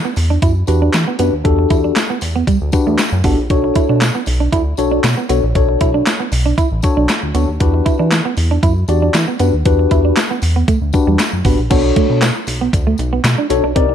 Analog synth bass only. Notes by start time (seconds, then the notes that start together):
0.17 E2
0.42 F#2
0.68 E2
0.94 E3
1.19 F#2
1.33 D#2
1.45 E2
1.71 E2
2.22 E2
2.61 D2
2.87 E2
3.12 F#2
3.24 A1
3.38 A#1
3.50 B1
3.89 B2
4.27 B1
4.53 D2
4.78 B1
5.04 B2
5.30 B1
5.43 A#1
5.55 B1
5.81 B1
6.32 B1
6.71 A1
6.97 B1
7.23 D2
7.35 D2
7.48 D#2
7.60 E2
8.00 E3
8.37 E2
8.63 F#2
8.88 E2
9.14 E3
9.40 F#2
9.53 D#2
9.66 E2
9.91 E2
10.42 E2
10.82 D2
11.07 E2
11.33 F#2
11.45 A1
11.58 A#1
11.71 B1
12.10 B2
12.47 B1
12.73 D2
12.99 B1
13.24 B2
13.50 B1
13.64 B1
13.76 C2